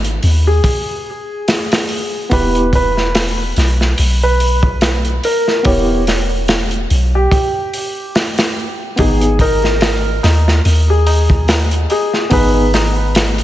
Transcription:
0.00 0.20 G#1 loud
0.04 closed hi-hat soft
0.23 0.60 D#2 loud
0.23 open hi-hat medium
0.47 2.17 G#4 medium
0.64 kick loud
0.64 open hi-hat medium
1.48 snare medium
1.48 open hi-hat medium
1.72 snare loud
1.72 open hi-hat medium
1.89 open hi-hat medium
2.30 3.53 E1 loud
2.30 2.69 B3 medium
2.30 2.70 E4 medium
2.30 2.71 G4 medium
2.30 2.70 B4 medium
2.30 kick loud
2.30 open hi-hat medium
2.55 closed hi-hat soft
2.73 3.50 B4 medium
2.73 kick medium
2.73 open hi-hat medium
2.97 snare soft
3.15 snare loud
3.15 open hi-hat medium
3.56 3.94 B1 loud
3.56 snare soft
3.56 open hi-hat medium
3.81 snare soft
3.98 5.20 B1 medium
3.98 open hi-hat medium
4.23 4.77 B4 medium
4.40 open hi-hat medium
4.63 kick medium
4.81 snare loud
4.81 open hi-hat medium
5.05 closed hi-hat soft
5.23 5.62 A#4 medium
5.23 open hi-hat medium
5.48 snare soft
5.63 6.87 E1 medium
5.63 6.02 B3 medium
5.63 6.03 E4 medium
5.63 6.04 G4 medium
5.63 6.04 C#5 medium
5.63 kick loud
5.63 open hi-hat medium
6.07 snare medium
6.07 open hi-hat medium
6.48 snare loud
6.48 open hi-hat medium
6.71 closed hi-hat soft
6.90 7.27 B1 loud
6.90 open hi-hat medium
7.15 8.84 G4 medium
7.31 kick loud
7.31 open hi-hat medium
7.73 open hi-hat medium
8.15 snare medium
8.15 open hi-hat medium
8.38 snare loud
8.38 open hi-hat medium
8.96 10.20 G#1 loud
8.96 9.36 B3 medium
8.96 9.37 D#4 medium
8.96 9.37 G#4 medium
8.96 kick loud
8.96 open hi-hat medium
8.96 tabla na soft
9.21 closed hi-hat soft
9.21 tabla na soft
9.39 10.17 A#4 medium
9.39 kick medium
9.39 open hi-hat medium
9.39 tabla na medium
9.64 snare soft
9.64 tabla na soft
9.81 snare loud
9.81 open hi-hat medium
9.81 tabla na soft
10.23 10.61 D#2 loud
10.23 snare soft
10.23 open hi-hat medium
10.23 tabla na medium
10.46 snare soft
10.46 tabla na soft
10.65 11.86 D#2 medium
10.65 open hi-hat medium
10.65 tabla na soft
10.88 11.44 G#4 medium
10.88 tabla na soft
11.06 open hi-hat medium
11.06 tabla na medium
11.30 kick medium
11.30 tabla na soft
11.48 snare loud
11.48 open hi-hat medium
11.48 tabla na soft
11.71 closed hi-hat soft
11.71 tabla na soft
11.90 12.29 G#4 medium
11.90 open hi-hat medium
11.90 tabla na medium
12.13 snare soft
12.13 tabla na soft
12.30 13.44 G#1 loud
12.30 12.69 B3 medium
12.30 12.70 D#4 medium
12.30 12.71 G#4 medium
12.30 12.70 B4 medium
12.30 kick loud
12.30 open hi-hat medium
12.30 tabla na soft
12.54 tabla na soft
12.74 snare medium
12.74 open hi-hat medium
12.74 tabla na medium
12.96 tabla na soft
13.15 snare loud
13.15 open hi-hat medium
13.15 tabla na soft
13.38 closed hi-hat soft

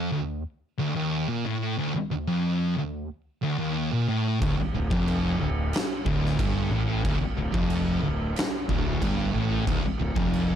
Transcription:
0.00 0.12 F2 loud
0.13 0.39 D2 medium
0.79 0.95 D2 loud
0.96 1.28 D#2 loud
1.29 1.44 A#2 loud
1.46 1.77 A2 medium
1.77 1.93 D2 loud
1.95 muted distorted electric guitar stroke medium
2.11 2.27 D2 medium
2.28 2.76 F2 loud
2.77 3.03 D2 medium
3.43 3.58 D2 loud
3.59 3.91 D#2 loud
3.92 4.08 A#2 loud
4.08 4.41 A2 medium
4.42 4.57 D1 loud
4.42 4.57 D2 loud
4.42 kick loud
4.42 crash medium
4.58 muted fingered electric bass stroke soft
4.58 muted distorted electric guitar stroke medium
4.74 4.90 D1 medium
4.74 4.90 D2 medium
4.90 5.37 F1 medium
4.90 5.39 F2 loud
4.90 kick loud
5.08 crash medium
5.40 5.71 D1 medium
5.40 5.66 D2 medium
5.73 snare loud
5.73 crash medium
6.06 6.37 D1 medium
6.06 6.38 D2 loud
6.06 kick loud
6.26 snare soft
6.39 6.70 G1 medium
6.39 6.71 G2 loud
6.39 kick loud
6.39 crash medium
6.71 7.02 A1 medium
6.71 7.04 A2 loud
7.05 7.20 D1 loud
7.05 7.20 D2 loud
7.05 kick loud
7.05 crash medium
7.21 muted fingered electric bass stroke soft
7.21 muted distorted electric guitar stroke medium
7.38 7.53 D1 medium
7.38 7.53 D2 medium
7.53 8.00 F1 medium
7.53 8.02 F2 loud
7.53 kick loud
7.70 crash medium
8.03 8.34 D1 medium
8.03 8.30 D2 medium
8.36 snare loud
8.36 crash medium
8.69 9.00 D1 medium
8.69 9.01 D2 loud
8.69 kick loud
9.02 9.32 G1 medium
9.02 9.34 G2 loud
9.02 kick loud
9.02 crash medium
9.34 9.65 A1 medium
9.34 9.66 A2 loud
9.67 9.83 D1 loud
9.67 9.83 D2 loud
9.67 kick loud
9.67 crash medium
9.84 muted fingered electric bass stroke soft
9.84 muted distorted electric guitar stroke medium
10.00 10.15 D1 medium
10.00 10.15 D2 medium
10.16 10.55 F1 medium
10.16 10.55 F2 loud
10.16 kick loud
10.33 crash medium

